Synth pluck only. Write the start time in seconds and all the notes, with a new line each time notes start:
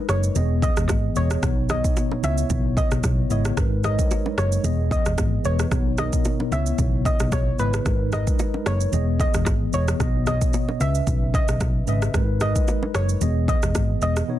0.09 C#5
0.63 D#5
1.17 C#5
1.70 D#5
2.24 E5
2.77 D#5
3.85 D#5
4.38 C#5
4.92 D#5
5.45 C#5
5.99 D#5
6.52 E5
7.06 D#5
7.33 C#5
7.59 B4
8.13 D#5
8.67 C#5
9.21 D#5
9.74 C#5
10.27 D#5
10.81 E5
11.35 D#5
12.42 D#5
12.95 C#5
13.49 D#5
14.03 D#5